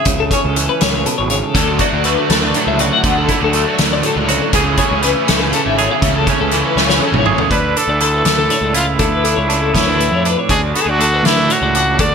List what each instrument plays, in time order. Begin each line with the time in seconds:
Already playing: clean electric guitar C#4 E5
0.05 picked electric bass C#2, clean electric guitar C#3, kick, closed hi-hat
0.20 clean electric guitar A4
0.31 clean electric guitar C#4 C#5, kick, closed hi-hat
0.45 picked electric bass C#2, clean electric guitar A4
0.56 clean electric guitar E3, closed hi-hat
0.69 clean electric guitar B4
0.81 picked electric bass C#2, clean electric guitar A2 C#5, snare, closed hi-hat
0.94 clean electric guitar C#5
1.06 clean electric guitar B2 A4, closed hi-hat
1.18 picked electric bass G#1, clean electric guitar C#5
1.30 clean electric guitar C#3 C#5, closed hi-hat
1.43 clean electric guitar A4
1.54 picked electric bass D2, overdriven electric guitar D3 F#3 A3 D4, clean electric guitar D3 A4, kick, closed hi-hat
1.79 overdriven electric guitar F#3 A3 D4, clean electric guitar F#4 D5, kick, closed hi-hat
1.93 picked electric bass D2
2.04 overdriven electric guitar D3 F#3 A3, clean electric guitar A3 B4, closed hi-hat
2.08 overdriven electric guitar D4
2.29 picked electric bass D2, overdriven electric guitar D3 F#3 A3 D4, clean electric guitar A4, snare, closed hi-hat
2.43 clean electric guitar B4
2.53 clean electric guitar A2 A4, overdriven electric guitar D3 F#3 A3 D4, closed hi-hat
2.67 picked electric bass C#2, clean electric guitar E5
2.79 clean electric guitar F#4 D5, closed hi-hat
2.93 clean electric guitar F#5
3.03 picked electric bass D2, overdriven electric guitar D3 F#3 A3 D4, clean electric guitar D3, kick, closed hi-hat
3.18 clean electric guitar A4
3.29 overdriven electric guitar F#3 A3 D4, clean electric guitar E4 C#5, kick, closed hi-hat
3.40 picked electric bass D2, clean electric guitar F#4 A4
3.53 overdriven electric guitar D3 F#3 A3, clean electric guitar A3, closed hi-hat
3.57 overdriven electric guitar D4
3.69 clean electric guitar C#5
3.78 picked electric bass D2, overdriven electric guitar D3 F#3 A3 D4, clean electric guitar D5, snare, closed hi-hat
3.93 clean electric guitar D5
4.02 clean electric guitar A2 A4, overdriven electric guitar D3 F#3 A3, closed hi-hat
4.06 overdriven electric guitar D4
4.16 picked electric bass C#2, clean electric guitar C#5
4.29 clean electric guitar F#4 C#5, closed hi-hat
4.42 clean electric guitar A4
4.53 picked electric bass C#2, clean electric guitar C#3 E3 C#4 G#4, overdriven electric guitar C#3 E3 A3 C#4, kick, closed hi-hat
4.77 overdriven electric guitar A3 C#4, clean electric guitar B3 C#5, kick, closed hi-hat
4.82 overdriven electric guitar E3
4.90 picked electric bass C#2, clean electric guitar C#4
5.01 overdriven electric guitar C#3, clean electric guitar E3 B4, closed hi-hat
5.05 overdriven electric guitar E3 A3 C#4
5.27 picked electric bass C#2, overdriven electric guitar C#3 E3 A3 C#4, clean electric guitar A4, snare, closed hi-hat
5.41 clean electric guitar B4
5.51 clean electric guitar C#3 A4, overdriven electric guitar C#3 E3 A3 C#4, closed hi-hat
5.66 picked electric bass G#1, clean electric guitar E5
5.78 clean electric guitar G#4 C#5, closed hi-hat
5.91 clean electric guitar E5
6.01 picked electric bass C#2, overdriven electric guitar C#3 E3 A3 C#4, clean electric guitar C#3, kick, closed hi-hat
6.16 clean electric guitar A4
6.26 overdriven electric guitar E3 A3 C#4, clean electric guitar C#4 C#5, kick, closed hi-hat
6.40 picked electric bass C#2, clean electric guitar A4
6.51 overdriven electric guitar C#3 E3 A3 C#4, clean electric guitar E3, closed hi-hat
6.65 clean electric guitar B4
6.76 picked electric bass C#2, overdriven electric guitar C#3 E3 A3 C#4, clean electric guitar C#5, snare
6.89 clean electric guitar C#5, snare
7.00 clean electric guitar C#3 A4, overdriven electric guitar C#3 E3
7.05 overdriven electric guitar A3 C#4
7.12 picked electric bass G#1, clean electric guitar C#5, mid tom
7.26 clean electric guitar G#4 C#5, mid tom
7.38 clean electric guitar A4, floor tom
7.50 picked electric bass D2, clean electric guitar D4 E4 D5, trumpet B4, kick, closed hi-hat
7.76 clean electric guitar D4 A4, trumpet A4, closed hi-hat
7.88 picked electric bass D2, clean electric guitar D5
8.00 clean electric guitar A3 E4 A4, trumpet A4, closed hi-hat
8.14 clean electric guitar B4
8.25 picked electric bass D2, clean electric guitar D4, snare, closed hi-hat
8.39 clean electric guitar A4
8.49 clean electric guitar A2 C#5, closed hi-hat
8.61 picked electric bass C#2, clean electric guitar D5
8.74 clean electric guitar E4 F5, trumpet F4, closed hi-hat
8.99 picked electric bass D2, clean electric guitar D4 A4, trumpet E4, kick, closed hi-hat
9.12 clean electric guitar B4
9.24 clean electric guitar D4 A4, closed hi-hat
9.37 picked electric bass C#2, clean electric guitar C#5
9.48 clean electric guitar A3 D4, closed hi-hat
9.62 clean electric guitar A4
9.73 picked electric bass D2, clean electric guitar B3 C#5, trumpet E4, kick, snare, closed hi-hat
9.87 clean electric guitar D4 B4
9.98 clean electric guitar A2, closed hi-hat
10.12 picked electric bass F2, clean electric guitar C#5
10.25 clean electric guitar D4 B4, closed hi-hat
10.39 clean electric guitar C#5
10.49 picked electric bass D2, clean electric guitar D4 F#4 D5, trumpet G#4, kick, closed hi-hat
10.74 clean electric guitar B3 A4, trumpet F#4, closed hi-hat
10.82 trumpet G#4
10.86 picked electric bass D2, clean electric guitar D4 D5
10.90 trumpet F#4
10.99 clean electric guitar A3 D4 A4, closed hi-hat
11.14 clean electric guitar B4
11.23 picked electric bass D2, clean electric guitar D4, trumpet E4, snare, closed hi-hat
11.39 clean electric guitar A4
11.48 clean electric guitar A2 C#5, closed hi-hat
11.52 trumpet F#4
11.62 picked electric bass C#2, clean electric guitar D5
11.75 clean electric guitar D4 F#5, closed hi-hat
11.99 picked electric bass D2, clean electric guitar D4 F#4 A4, trumpet D5, kick, closed hi-hat